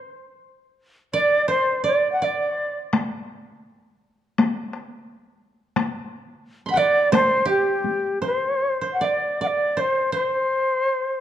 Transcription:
0.00 1.18 C5 medium
1.13 1.83 D5 medium
1.13 1.47 D5 medium
1.48 2.55 C5 medium
1.48 1.82 C5 medium
1.84 2.21 D5 medium
1.84 2.12 D5 medium
2.12 2.26 F#5 medium
2.22 2.55 D5 medium
2.22 2.78 D5 medium
2.55 3.82 C5 medium
2.93 taiko rim medium
2.93 taiko high medium
4.38 taiko rim soft
4.38 taiko high medium
4.73 taiko rim soft
5.76 taiko rim medium
5.76 taiko high medium
6.66 7.18 B5 soft
6.66 7.79 C6 soft
6.71 6.80 F#5 medium
6.71 8.08 G5 soft
6.76 8.37 D5 medium
6.76 7.13 D5 medium
6.76 7.51 F#5 soft
7.12 8.21 C5 medium
7.12 7.46 C5 medium
7.12 taiko rim soft
7.12 taiko high soft
7.45 9.49 G4 medium
7.45 8.19 G4 medium
7.84 taiko high soft
8.22 8.81 C5 medium
8.26 8.92 C5 medium
8.81 9.76 C5 soft
8.93 9.06 F#5 soft
9.01 9.41 D5 medium
9.01 9.42 D5 medium
9.41 11.01 D5 soft
9.41 9.48 F#5 medium
9.47 9.82 D5 medium
9.77 10.12 C5 medium
9.77 10.14 C5 medium
10.12 11.21 C5 medium
10.12 11.20 C5 medium

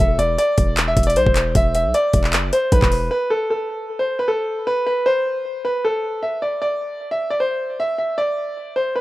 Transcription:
0.00 0.18 E1 loud
0.00 0.17 E5 medium
0.19 0.38 E1 loud
0.19 0.37 D5 medium
0.19 closed hi-hat medium
0.38 0.85 D5 medium
0.38 closed hi-hat medium
0.58 0.95 E1 loud
0.58 kick loud
0.58 closed hi-hat medium
0.77 clap loud
0.77 closed hi-hat medium
0.88 1.06 E5 medium
0.97 1.18 E1 loud
0.97 kick medium
0.97 closed hi-hat medium
1.03 1.15 D5 medium
1.03 closed hi-hat medium
1.10 closed hi-hat medium
1.16 1.26 B1 loud
1.16 1.53 C5 medium
1.16 closed hi-hat medium
1.26 1.54 E1 loud
1.26 kick loud
1.36 clap loud
1.36 closed hi-hat medium
1.55 1.86 E1 loud
1.55 1.73 E5 medium
1.55 kick loud
1.55 closed hi-hat medium
1.75 1.93 E5 medium
1.75 closed hi-hat medium
1.85 1.94 B1 medium
1.94 2.49 D5 medium
1.94 closed hi-hat medium
2.13 2.35 E1 loud
2.13 kick loud
2.13 closed hi-hat medium
2.24 clap medium
2.33 2.52 F#1 loud
2.33 clap loud
2.33 closed hi-hat medium
2.53 2.71 C5 medium
2.53 closed hi-hat medium
2.72 2.82 B1 loud
2.72 3.09 B4 medium
2.72 kick loud
2.72 closed hi-hat medium
2.82 3.10 E1 loud
2.82 kick medium
2.82 clap medium
2.92 open hi-hat medium
3.11 3.29 B4 medium
3.30 3.49 A4 medium
3.50 3.97 A4 medium
3.99 4.17 C5 medium
4.19 4.27 B4 medium
4.28 4.65 A4 medium
4.67 4.85 B4 medium
4.87 5.05 B4 medium
5.06 5.61 C5 medium
5.65 5.83 B4 medium
5.85 6.21 A4 medium
6.23 6.41 E5 medium
6.42 6.60 D5 medium
6.62 7.08 D5 medium
7.11 7.29 E5 medium
7.30 7.39 D5 medium
7.40 7.76 C5 medium
7.80 7.97 E5 medium
7.98 8.16 E5 medium
8.18 8.73 D5 medium
8.76 8.94 C5 medium
8.96 9.01 B4 medium

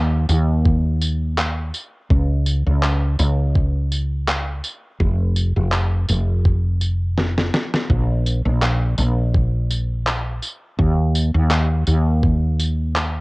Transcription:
0.00 0.25 D#2 medium
0.29 1.70 D#2 loud
0.29 tambourine medium
0.65 kick loud
1.01 tambourine medium
1.38 clap medium
1.74 tambourine medium
2.10 2.63 C#2 medium
2.10 kick loud
2.46 tambourine medium
2.66 3.15 C#2 medium
2.83 clap loud
3.19 4.60 C#2 loud
3.19 tambourine medium
3.56 kick loud
3.92 tambourine medium
4.28 clap loud
4.64 tambourine medium
5.00 5.52 F1 loud
5.00 kick loud
5.36 tambourine medium
5.56 6.05 F1 medium
5.72 clap loud
6.08 7.49 F1 loud
6.08 tambourine medium
6.45 kick loud
6.81 tambourine medium
7.18 snare medium
7.38 snare medium
7.54 snare medium
7.74 snare medium
7.90 8.42 A#1 medium
7.90 kick loud
8.26 tambourine medium
8.45 8.94 A#1 medium
8.62 clap loud
8.98 10.38 A#1 loud
8.98 tambourine medium
9.34 kick loud
9.70 tambourine medium
10.07 clap loud
10.42 tambourine medium
10.79 11.31 D#2 medium
10.79 kick loud
11.15 tambourine medium
11.34 11.83 D#2 medium
11.51 clap loud
11.87 13.21 D#2 loud
11.87 tambourine medium
12.23 kick loud
12.60 tambourine medium
12.96 clap loud

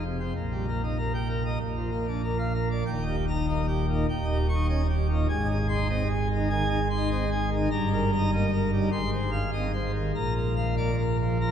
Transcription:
0.00 0.32 F1 medium
0.00 0.32 F2 medium
0.05 0.19 C3 medium
0.20 0.33 C4 medium
0.35 1.57 A#1 medium
0.35 1.57 A#2 medium
0.52 0.65 G3 medium
0.68 0.82 A#3 medium
0.84 0.97 D#4 medium
0.98 1.12 A#4 medium
1.14 1.28 G5 medium
1.29 1.43 A#4 medium
1.45 1.58 D#5 medium
1.61 2.83 A#1 medium
1.61 2.83 A#2 medium
1.76 1.90 F3 medium
1.91 2.06 A#3 medium
2.07 2.22 D4 medium
2.23 2.37 A#4 medium
2.39 2.53 F5 medium
2.54 2.69 A#4 medium
2.71 2.84 D5 medium
2.86 4.05 D#1 medium
2.86 4.05 D#2 medium
2.86 3.05 G5 medium
3.02 3.16 D#4 medium
3.07 3.25 G4 medium
3.28 3.46 A#5 medium
3.32 3.46 D#4 medium
3.48 3.61 A#3 medium
3.48 3.66 D#5 medium
3.68 3.86 G4 medium
3.89 4.06 A#2 medium
3.93 4.06 D#4 medium
4.09 5.26 D#1 medium
4.09 5.26 D#2 medium
4.09 4.27 G5 medium
4.24 4.37 D#4 medium
4.30 4.47 G4 medium
4.49 4.67 C#6 loud
4.54 4.68 D#4 medium
4.69 4.82 C#4 medium
4.69 4.87 D#5 medium
4.89 5.07 G4 medium
5.10 5.27 A#2 medium
5.14 5.27 D#4 medium
5.29 7.68 G#1 medium
5.29 7.68 G#2 medium
5.29 5.47 G#5 medium
5.44 5.58 D#4 medium
5.48 5.67 G#4 medium
5.69 5.87 C6 loud
5.74 5.88 D#4 medium
5.89 6.03 C4 medium
5.89 6.08 D#5 medium
6.10 6.28 G#4 medium
6.29 6.48 D#3 medium
6.35 6.49 D#4 medium
6.50 6.64 D#3 medium
6.50 6.68 G#5 loud
6.65 6.79 D#4 medium
6.70 6.88 G#4 medium
6.90 7.09 C6 medium
6.96 7.10 D#4 medium
7.11 7.24 C4 medium
7.11 7.29 D#5 medium
7.32 7.49 G#4 medium
7.51 7.68 D#3 medium
7.56 7.69 D#4 medium
7.71 8.88 G1 medium
7.71 8.89 G2 medium
7.71 7.89 A#5 loud
7.88 8.01 D#4 medium
7.93 8.10 A#4 medium
8.13 8.30 A#5 medium
8.18 8.31 D#4 medium
8.33 8.46 A#3 medium
8.33 8.51 D#5 medium
8.53 8.70 A#4 medium
8.73 8.90 G3 medium
8.78 8.90 D#4 medium
8.92 10.11 G#1 medium
8.92 10.11 G#2 medium
8.92 9.10 C6 loud
9.12 9.30 C5 medium
9.32 9.50 F5 medium
9.53 9.67 C4 medium
9.53 9.71 D#5 medium
9.73 9.92 C5 medium
9.95 10.12 D#3 medium
10.15 11.51 A#1 medium
10.15 11.51 A#2 medium
10.15 10.34 A#5 medium
10.36 10.54 A#4 medium
10.56 10.75 F5 medium
10.77 10.91 A#3 medium
10.77 10.96 D5 medium
10.99 11.17 A#4 medium
11.20 11.38 F3 medium
11.41 11.51 F3 medium
11.41 11.51 A#5 medium

